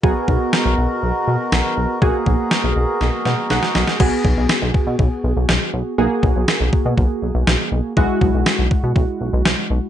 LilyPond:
<<
  \new Staff \with { instrumentName = "Accordion" } { \time 4/4 \key gis \minor \tempo 4 = 121 << { ais'1~ | ais'1 | r1 | r1 |
r1 | } \\ { <b, fis'>1 | <fis' gis'>1 | r1 | r1 |
r1 | } >> }
  \new Staff \with { instrumentName = "Synth keys" } { \time 4/4 \key gis \minor << { r1 | r2. fis''4 | r1 | r1 |
r1 | } \\ { <b fis' gis'>1 | <ais fis' gis'>1 | <b fis' gis'>1 | <ais fis' gis'>1 |
<gis e' fis'>1 | } >> }
  \new Staff \with { instrumentName = "Analog synth bass" } { \clef bass \time 4/4 \key gis \minor b,,16 r16 b,,16 r8 b,,16 b,,16 r16 b,,16 r16 b,16 r16 b,,16 r16 b,,16 r16 | b,,16 r16 b,,16 r8 b,,16 b,,16 r16 b,,16 r16 b,16 r16 b,,16 r16 b,,16 r16 | b,,16 r16 b,,16 b,,16 r16 b,,16 r16 b,16 b,,16 r16 b,,16 b,,16 b,,16 r16 b,,16 r16 | b,,16 r16 b,,16 b,,16 r16 b,,16 r16 b,16 b,,16 r16 b,,16 b,,16 b,,16 r16 b,,16 r16 |
b,,16 r16 b,,16 b,,16 r16 b,,16 r16 b,16 b,,16 r16 b,,16 b,,16 b,,16 r16 b,,16 r16 | }
  \new DrumStaff \with { instrumentName = "Drums" } \drummode { \time 4/4 bd8 bd8 sn4 r4 sn4 | bd8 bd8 sn4 sn8 sn8 sn16 sn16 sn16 sn16 | <cymc bd>8 bd8 sn8 bd8 bd4 sn4 | r8 bd8 sn8 bd8 bd4 sn4 |
bd8 bd8 sn8 bd8 bd4 sn4 | }
>>